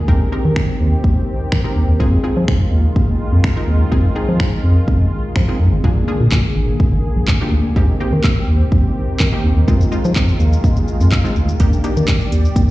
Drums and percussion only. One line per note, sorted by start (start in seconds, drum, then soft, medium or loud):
0.08 kick loud
0.56 finger snap loud
0.56 kick loud
1.04 kick loud
1.52 finger snap loud
1.52 kick loud
2.00 kick loud
2.48 finger snap loud
2.48 kick loud
2.96 kick loud
3.44 finger snap loud
3.44 kick loud
3.92 kick loud
4.40 finger snap loud
4.40 kick loud
4.88 kick loud
5.36 finger snap loud
5.36 kick loud
5.84 kick loud
6.32 kick loud
6.32 clap loud
6.80 kick loud
7.28 kick loud
7.28 clap loud
7.76 kick loud
8.24 kick loud
8.24 clap loud
8.72 kick loud
9.20 kick loud
9.20 clap loud
9.68 kick loud
9.68 shaker medium
9.81 shaker medium
9.92 shaker soft
10.05 shaker medium
10.16 kick loud
10.16 clap loud
10.16 shaker medium
10.29 shaker soft
10.40 shaker medium
10.53 shaker medium
10.64 kick loud
10.64 shaker medium
10.77 shaker medium
10.88 shaker medium
11.01 shaker medium
11.12 kick loud
11.12 clap loud
11.12 shaker medium
11.25 shaker medium
11.36 shaker soft
11.49 shaker medium
11.60 kick loud
11.60 closed hi-hat medium
11.60 shaker medium
11.73 shaker medium
11.84 closed hi-hat soft
11.84 shaker medium
11.97 shaker medium
12.08 kick loud
12.08 clap loud
12.08 closed hi-hat medium
12.08 shaker medium
12.21 shaker medium
12.32 closed hi-hat medium
12.32 shaker medium
12.45 shaker medium
12.56 kick loud
12.56 closed hi-hat medium
12.56 shaker medium